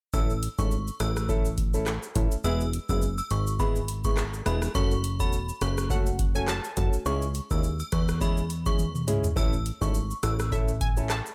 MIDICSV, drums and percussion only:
0, 0, Header, 1, 2, 480
1, 0, Start_track
1, 0, Tempo, 576923
1, 114, Time_signature, 4, 2, 24, 8
1, 9442, End_track
2, 0, Start_track
2, 0, Title_t, "Drums"
2, 113, Note_on_c, 9, 82, 80
2, 114, Note_off_c, 9, 82, 0
2, 114, Note_on_c, 9, 36, 121
2, 114, Note_on_c, 9, 82, 82
2, 197, Note_off_c, 9, 36, 0
2, 197, Note_off_c, 9, 82, 0
2, 247, Note_on_c, 9, 82, 44
2, 250, Note_off_c, 9, 82, 0
2, 250, Note_on_c, 9, 82, 56
2, 333, Note_off_c, 9, 82, 0
2, 355, Note_on_c, 9, 42, 76
2, 355, Note_on_c, 9, 82, 56
2, 438, Note_off_c, 9, 42, 0
2, 438, Note_off_c, 9, 82, 0
2, 488, Note_on_c, 9, 36, 82
2, 488, Note_on_c, 9, 82, 77
2, 489, Note_off_c, 9, 82, 0
2, 489, Note_on_c, 9, 82, 79
2, 571, Note_off_c, 9, 36, 0
2, 572, Note_off_c, 9, 82, 0
2, 593, Note_on_c, 9, 82, 74
2, 594, Note_off_c, 9, 82, 0
2, 594, Note_on_c, 9, 82, 72
2, 677, Note_off_c, 9, 82, 0
2, 728, Note_on_c, 9, 82, 61
2, 811, Note_off_c, 9, 82, 0
2, 832, Note_on_c, 9, 42, 71
2, 832, Note_on_c, 9, 82, 52
2, 835, Note_off_c, 9, 82, 0
2, 835, Note_on_c, 9, 37, 88
2, 835, Note_on_c, 9, 82, 56
2, 915, Note_off_c, 9, 42, 0
2, 918, Note_off_c, 9, 37, 0
2, 918, Note_off_c, 9, 82, 0
2, 969, Note_on_c, 9, 82, 78
2, 970, Note_off_c, 9, 82, 0
2, 970, Note_on_c, 9, 82, 82
2, 971, Note_on_c, 9, 37, 91
2, 1054, Note_off_c, 9, 82, 0
2, 1055, Note_off_c, 9, 37, 0
2, 1072, Note_on_c, 9, 36, 94
2, 1073, Note_on_c, 9, 82, 74
2, 1075, Note_off_c, 9, 82, 0
2, 1075, Note_on_c, 9, 82, 67
2, 1155, Note_off_c, 9, 36, 0
2, 1158, Note_off_c, 9, 82, 0
2, 1207, Note_on_c, 9, 82, 65
2, 1209, Note_off_c, 9, 82, 0
2, 1209, Note_on_c, 9, 82, 56
2, 1292, Note_off_c, 9, 82, 0
2, 1312, Note_on_c, 9, 42, 77
2, 1312, Note_on_c, 9, 82, 53
2, 1313, Note_on_c, 9, 36, 89
2, 1395, Note_off_c, 9, 42, 0
2, 1395, Note_off_c, 9, 82, 0
2, 1396, Note_off_c, 9, 36, 0
2, 1445, Note_on_c, 9, 82, 72
2, 1448, Note_off_c, 9, 82, 0
2, 1448, Note_on_c, 9, 82, 62
2, 1531, Note_off_c, 9, 82, 0
2, 1552, Note_on_c, 9, 37, 93
2, 1552, Note_on_c, 9, 39, 93
2, 1552, Note_on_c, 9, 82, 75
2, 1635, Note_off_c, 9, 37, 0
2, 1635, Note_off_c, 9, 39, 0
2, 1635, Note_off_c, 9, 82, 0
2, 1686, Note_on_c, 9, 82, 43
2, 1688, Note_off_c, 9, 82, 0
2, 1688, Note_on_c, 9, 82, 57
2, 1771, Note_off_c, 9, 82, 0
2, 1790, Note_on_c, 9, 82, 53
2, 1793, Note_off_c, 9, 82, 0
2, 1793, Note_on_c, 9, 42, 79
2, 1793, Note_on_c, 9, 82, 57
2, 1795, Note_on_c, 9, 36, 102
2, 1876, Note_off_c, 9, 42, 0
2, 1876, Note_off_c, 9, 82, 0
2, 1878, Note_off_c, 9, 36, 0
2, 1925, Note_on_c, 9, 82, 79
2, 1927, Note_off_c, 9, 82, 0
2, 1927, Note_on_c, 9, 82, 77
2, 2010, Note_off_c, 9, 82, 0
2, 2029, Note_on_c, 9, 82, 77
2, 2032, Note_off_c, 9, 82, 0
2, 2032, Note_on_c, 9, 82, 79
2, 2116, Note_off_c, 9, 82, 0
2, 2165, Note_on_c, 9, 82, 55
2, 2167, Note_off_c, 9, 82, 0
2, 2167, Note_on_c, 9, 82, 47
2, 2251, Note_off_c, 9, 82, 0
2, 2275, Note_on_c, 9, 42, 77
2, 2275, Note_on_c, 9, 82, 58
2, 2358, Note_off_c, 9, 42, 0
2, 2358, Note_off_c, 9, 82, 0
2, 2405, Note_on_c, 9, 82, 78
2, 2407, Note_off_c, 9, 82, 0
2, 2407, Note_on_c, 9, 36, 84
2, 2407, Note_on_c, 9, 82, 78
2, 2490, Note_off_c, 9, 36, 0
2, 2491, Note_off_c, 9, 82, 0
2, 2511, Note_on_c, 9, 82, 72
2, 2594, Note_off_c, 9, 82, 0
2, 2644, Note_on_c, 9, 82, 48
2, 2646, Note_off_c, 9, 82, 0
2, 2646, Note_on_c, 9, 82, 59
2, 2729, Note_off_c, 9, 82, 0
2, 2751, Note_on_c, 9, 42, 69
2, 2751, Note_on_c, 9, 82, 50
2, 2752, Note_off_c, 9, 82, 0
2, 2752, Note_on_c, 9, 82, 56
2, 2834, Note_off_c, 9, 42, 0
2, 2835, Note_off_c, 9, 82, 0
2, 2886, Note_on_c, 9, 82, 82
2, 2887, Note_off_c, 9, 82, 0
2, 2887, Note_on_c, 9, 82, 77
2, 2970, Note_off_c, 9, 82, 0
2, 2989, Note_on_c, 9, 82, 75
2, 2990, Note_on_c, 9, 36, 90
2, 2993, Note_off_c, 9, 82, 0
2, 2993, Note_on_c, 9, 82, 68
2, 3074, Note_off_c, 9, 36, 0
2, 3076, Note_off_c, 9, 82, 0
2, 3125, Note_on_c, 9, 82, 61
2, 3126, Note_off_c, 9, 82, 0
2, 3126, Note_on_c, 9, 82, 55
2, 3209, Note_off_c, 9, 82, 0
2, 3231, Note_on_c, 9, 42, 75
2, 3231, Note_on_c, 9, 82, 53
2, 3314, Note_off_c, 9, 42, 0
2, 3314, Note_off_c, 9, 82, 0
2, 3364, Note_on_c, 9, 82, 74
2, 3366, Note_off_c, 9, 82, 0
2, 3366, Note_on_c, 9, 36, 89
2, 3366, Note_on_c, 9, 82, 60
2, 3449, Note_off_c, 9, 36, 0
2, 3449, Note_off_c, 9, 82, 0
2, 3470, Note_on_c, 9, 37, 96
2, 3470, Note_on_c, 9, 39, 96
2, 3470, Note_on_c, 9, 82, 68
2, 3471, Note_off_c, 9, 82, 0
2, 3471, Note_on_c, 9, 82, 76
2, 3554, Note_off_c, 9, 37, 0
2, 3554, Note_off_c, 9, 39, 0
2, 3554, Note_off_c, 9, 82, 0
2, 3606, Note_on_c, 9, 82, 44
2, 3607, Note_off_c, 9, 82, 0
2, 3607, Note_on_c, 9, 82, 55
2, 3691, Note_off_c, 9, 82, 0
2, 3710, Note_on_c, 9, 37, 99
2, 3712, Note_on_c, 9, 42, 79
2, 3712, Note_on_c, 9, 82, 54
2, 3793, Note_off_c, 9, 37, 0
2, 3795, Note_off_c, 9, 42, 0
2, 3795, Note_off_c, 9, 82, 0
2, 3844, Note_on_c, 9, 37, 97
2, 3846, Note_on_c, 9, 82, 72
2, 3848, Note_off_c, 9, 82, 0
2, 3848, Note_on_c, 9, 82, 80
2, 3927, Note_off_c, 9, 37, 0
2, 3931, Note_off_c, 9, 82, 0
2, 3951, Note_on_c, 9, 82, 78
2, 3952, Note_on_c, 9, 36, 127
2, 4034, Note_off_c, 9, 82, 0
2, 4035, Note_off_c, 9, 36, 0
2, 4086, Note_on_c, 9, 82, 48
2, 4087, Note_off_c, 9, 82, 0
2, 4087, Note_on_c, 9, 82, 57
2, 4170, Note_off_c, 9, 82, 0
2, 4193, Note_on_c, 9, 42, 81
2, 4193, Note_on_c, 9, 82, 54
2, 4276, Note_off_c, 9, 42, 0
2, 4276, Note_off_c, 9, 82, 0
2, 4325, Note_on_c, 9, 82, 77
2, 4326, Note_off_c, 9, 82, 0
2, 4326, Note_on_c, 9, 36, 80
2, 4326, Note_on_c, 9, 82, 76
2, 4409, Note_off_c, 9, 36, 0
2, 4410, Note_off_c, 9, 82, 0
2, 4431, Note_on_c, 9, 82, 73
2, 4432, Note_off_c, 9, 82, 0
2, 4432, Note_on_c, 9, 82, 75
2, 4515, Note_off_c, 9, 82, 0
2, 4565, Note_on_c, 9, 82, 49
2, 4566, Note_off_c, 9, 82, 0
2, 4566, Note_on_c, 9, 82, 59
2, 4649, Note_off_c, 9, 82, 0
2, 4670, Note_on_c, 9, 42, 69
2, 4670, Note_on_c, 9, 82, 51
2, 4673, Note_on_c, 9, 37, 90
2, 4674, Note_off_c, 9, 82, 0
2, 4674, Note_on_c, 9, 82, 54
2, 4754, Note_off_c, 9, 42, 0
2, 4756, Note_off_c, 9, 37, 0
2, 4757, Note_off_c, 9, 82, 0
2, 4807, Note_on_c, 9, 82, 75
2, 4808, Note_off_c, 9, 82, 0
2, 4808, Note_on_c, 9, 82, 84
2, 4809, Note_on_c, 9, 37, 93
2, 4892, Note_off_c, 9, 37, 0
2, 4892, Note_off_c, 9, 82, 0
2, 4910, Note_on_c, 9, 36, 93
2, 4911, Note_on_c, 9, 82, 74
2, 4914, Note_off_c, 9, 82, 0
2, 4914, Note_on_c, 9, 82, 68
2, 4994, Note_off_c, 9, 36, 0
2, 4997, Note_off_c, 9, 82, 0
2, 5045, Note_on_c, 9, 82, 63
2, 5047, Note_off_c, 9, 82, 0
2, 5047, Note_on_c, 9, 82, 56
2, 5131, Note_off_c, 9, 82, 0
2, 5151, Note_on_c, 9, 36, 96
2, 5151, Note_on_c, 9, 42, 75
2, 5151, Note_on_c, 9, 82, 56
2, 5234, Note_off_c, 9, 42, 0
2, 5234, Note_off_c, 9, 82, 0
2, 5235, Note_off_c, 9, 36, 0
2, 5284, Note_on_c, 9, 82, 72
2, 5287, Note_off_c, 9, 82, 0
2, 5287, Note_on_c, 9, 82, 57
2, 5371, Note_off_c, 9, 82, 0
2, 5391, Note_on_c, 9, 37, 98
2, 5391, Note_on_c, 9, 39, 89
2, 5391, Note_on_c, 9, 82, 73
2, 5392, Note_off_c, 9, 82, 0
2, 5392, Note_on_c, 9, 82, 70
2, 5474, Note_off_c, 9, 37, 0
2, 5474, Note_off_c, 9, 39, 0
2, 5475, Note_off_c, 9, 82, 0
2, 5527, Note_on_c, 9, 82, 57
2, 5528, Note_off_c, 9, 82, 0
2, 5528, Note_on_c, 9, 82, 42
2, 5612, Note_off_c, 9, 82, 0
2, 5631, Note_on_c, 9, 82, 53
2, 5632, Note_off_c, 9, 82, 0
2, 5632, Note_on_c, 9, 42, 81
2, 5632, Note_on_c, 9, 82, 59
2, 5634, Note_on_c, 9, 36, 102
2, 5715, Note_off_c, 9, 42, 0
2, 5715, Note_off_c, 9, 82, 0
2, 5717, Note_off_c, 9, 36, 0
2, 5766, Note_on_c, 9, 82, 75
2, 5768, Note_off_c, 9, 82, 0
2, 5768, Note_on_c, 9, 82, 78
2, 5851, Note_off_c, 9, 82, 0
2, 5871, Note_on_c, 9, 82, 77
2, 5873, Note_off_c, 9, 82, 0
2, 5873, Note_on_c, 9, 82, 83
2, 5957, Note_off_c, 9, 82, 0
2, 6006, Note_on_c, 9, 82, 58
2, 6007, Note_off_c, 9, 82, 0
2, 6007, Note_on_c, 9, 82, 47
2, 6090, Note_off_c, 9, 82, 0
2, 6109, Note_on_c, 9, 82, 51
2, 6114, Note_off_c, 9, 82, 0
2, 6114, Note_on_c, 9, 42, 77
2, 6114, Note_on_c, 9, 82, 56
2, 6197, Note_off_c, 9, 42, 0
2, 6197, Note_off_c, 9, 82, 0
2, 6243, Note_on_c, 9, 82, 79
2, 6247, Note_on_c, 9, 36, 85
2, 6248, Note_off_c, 9, 82, 0
2, 6248, Note_on_c, 9, 82, 79
2, 6330, Note_off_c, 9, 36, 0
2, 6331, Note_off_c, 9, 82, 0
2, 6350, Note_on_c, 9, 82, 75
2, 6351, Note_off_c, 9, 82, 0
2, 6351, Note_on_c, 9, 82, 76
2, 6435, Note_off_c, 9, 82, 0
2, 6483, Note_on_c, 9, 82, 47
2, 6487, Note_off_c, 9, 82, 0
2, 6487, Note_on_c, 9, 82, 61
2, 6570, Note_off_c, 9, 82, 0
2, 6591, Note_on_c, 9, 42, 68
2, 6591, Note_on_c, 9, 82, 50
2, 6593, Note_off_c, 9, 82, 0
2, 6593, Note_on_c, 9, 37, 90
2, 6593, Note_on_c, 9, 82, 57
2, 6594, Note_on_c, 9, 36, 94
2, 6674, Note_off_c, 9, 42, 0
2, 6676, Note_off_c, 9, 82, 0
2, 6677, Note_off_c, 9, 36, 0
2, 6677, Note_off_c, 9, 37, 0
2, 6727, Note_on_c, 9, 82, 80
2, 6729, Note_on_c, 9, 37, 99
2, 6811, Note_off_c, 9, 82, 0
2, 6813, Note_off_c, 9, 37, 0
2, 6830, Note_on_c, 9, 82, 77
2, 6831, Note_on_c, 9, 36, 86
2, 6834, Note_off_c, 9, 82, 0
2, 6834, Note_on_c, 9, 82, 69
2, 6914, Note_off_c, 9, 36, 0
2, 6917, Note_off_c, 9, 82, 0
2, 6966, Note_on_c, 9, 82, 64
2, 7049, Note_off_c, 9, 82, 0
2, 7073, Note_on_c, 9, 42, 78
2, 7073, Note_on_c, 9, 82, 55
2, 7156, Note_off_c, 9, 42, 0
2, 7156, Note_off_c, 9, 82, 0
2, 7205, Note_on_c, 9, 82, 73
2, 7206, Note_off_c, 9, 82, 0
2, 7206, Note_on_c, 9, 82, 58
2, 7207, Note_on_c, 9, 36, 90
2, 7289, Note_off_c, 9, 82, 0
2, 7290, Note_off_c, 9, 36, 0
2, 7311, Note_on_c, 9, 82, 72
2, 7313, Note_off_c, 9, 82, 0
2, 7313, Note_on_c, 9, 82, 70
2, 7314, Note_on_c, 9, 48, 62
2, 7396, Note_off_c, 9, 82, 0
2, 7397, Note_off_c, 9, 48, 0
2, 7447, Note_on_c, 9, 82, 43
2, 7449, Note_off_c, 9, 82, 0
2, 7449, Note_on_c, 9, 47, 68
2, 7449, Note_on_c, 9, 82, 54
2, 7532, Note_off_c, 9, 47, 0
2, 7533, Note_off_c, 9, 82, 0
2, 7553, Note_on_c, 9, 42, 83
2, 7553, Note_on_c, 9, 82, 55
2, 7554, Note_on_c, 9, 45, 102
2, 7637, Note_off_c, 9, 42, 0
2, 7637, Note_off_c, 9, 45, 0
2, 7637, Note_off_c, 9, 82, 0
2, 7688, Note_on_c, 9, 43, 98
2, 7688, Note_on_c, 9, 82, 79
2, 7690, Note_off_c, 9, 82, 0
2, 7690, Note_on_c, 9, 82, 78
2, 7771, Note_off_c, 9, 43, 0
2, 7773, Note_off_c, 9, 82, 0
2, 7793, Note_on_c, 9, 36, 126
2, 7793, Note_on_c, 9, 82, 80
2, 7794, Note_off_c, 9, 82, 0
2, 7794, Note_on_c, 9, 82, 80
2, 7876, Note_off_c, 9, 36, 0
2, 7878, Note_off_c, 9, 82, 0
2, 7928, Note_on_c, 9, 82, 46
2, 7929, Note_off_c, 9, 82, 0
2, 7929, Note_on_c, 9, 82, 54
2, 8013, Note_off_c, 9, 82, 0
2, 8036, Note_on_c, 9, 42, 75
2, 8036, Note_on_c, 9, 82, 56
2, 8119, Note_off_c, 9, 42, 0
2, 8119, Note_off_c, 9, 82, 0
2, 8168, Note_on_c, 9, 36, 86
2, 8168, Note_on_c, 9, 82, 80
2, 8169, Note_off_c, 9, 82, 0
2, 8169, Note_on_c, 9, 82, 78
2, 8251, Note_off_c, 9, 36, 0
2, 8253, Note_off_c, 9, 82, 0
2, 8273, Note_on_c, 9, 82, 75
2, 8275, Note_off_c, 9, 82, 0
2, 8275, Note_on_c, 9, 82, 75
2, 8358, Note_off_c, 9, 82, 0
2, 8408, Note_on_c, 9, 82, 62
2, 8409, Note_off_c, 9, 82, 0
2, 8409, Note_on_c, 9, 82, 46
2, 8492, Note_off_c, 9, 82, 0
2, 8512, Note_on_c, 9, 42, 69
2, 8512, Note_on_c, 9, 82, 50
2, 8515, Note_off_c, 9, 82, 0
2, 8515, Note_on_c, 9, 37, 86
2, 8515, Note_on_c, 9, 82, 60
2, 8595, Note_off_c, 9, 42, 0
2, 8598, Note_off_c, 9, 37, 0
2, 8599, Note_off_c, 9, 82, 0
2, 8649, Note_on_c, 9, 82, 77
2, 8650, Note_off_c, 9, 82, 0
2, 8650, Note_on_c, 9, 37, 97
2, 8650, Note_on_c, 9, 82, 81
2, 8734, Note_off_c, 9, 37, 0
2, 8734, Note_off_c, 9, 82, 0
2, 8752, Note_on_c, 9, 36, 90
2, 8754, Note_on_c, 9, 82, 78
2, 8755, Note_off_c, 9, 82, 0
2, 8755, Note_on_c, 9, 82, 66
2, 8835, Note_off_c, 9, 36, 0
2, 8838, Note_off_c, 9, 82, 0
2, 8888, Note_on_c, 9, 82, 55
2, 8972, Note_off_c, 9, 82, 0
2, 8993, Note_on_c, 9, 36, 93
2, 8994, Note_on_c, 9, 42, 73
2, 8994, Note_on_c, 9, 82, 57
2, 9076, Note_off_c, 9, 36, 0
2, 9077, Note_off_c, 9, 42, 0
2, 9077, Note_off_c, 9, 82, 0
2, 9127, Note_on_c, 9, 82, 60
2, 9210, Note_off_c, 9, 82, 0
2, 9233, Note_on_c, 9, 37, 94
2, 9233, Note_on_c, 9, 39, 97
2, 9233, Note_on_c, 9, 82, 66
2, 9234, Note_off_c, 9, 82, 0
2, 9234, Note_on_c, 9, 82, 76
2, 9316, Note_off_c, 9, 37, 0
2, 9316, Note_off_c, 9, 39, 0
2, 9317, Note_off_c, 9, 82, 0
2, 9369, Note_on_c, 9, 82, 42
2, 9370, Note_off_c, 9, 82, 0
2, 9370, Note_on_c, 9, 82, 56
2, 9442, Note_off_c, 9, 82, 0
2, 9442, End_track
0, 0, End_of_file